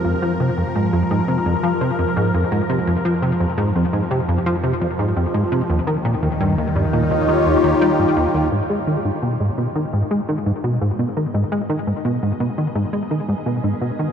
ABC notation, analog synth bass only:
X:1
M:4/4
L:1/16
Q:1/4=85
K:Fm
V:1 name="Analog synth bass" clef=bass
F,, F, C, F,, A,, F,, A,, C, F,, F, C, F,, A,, F,, A,, C, | F,, F, C, F,, A,, F,, A,, C, F,, F, C, F,, A,, F,, A,, C, | E,, E, B,, E,, G,, E,, G,, B,, E,, E, E,, E,, G, G,, E,, E,, | [K:G#dor] G,, G, D, G,, B,, G,, B,, D, G,, G, D, G,, B,, G,, B,, D, |
G,, G, D, G,, B,, G,, B,, D, G,, G, D, G,, B,, G,, B,, D, |]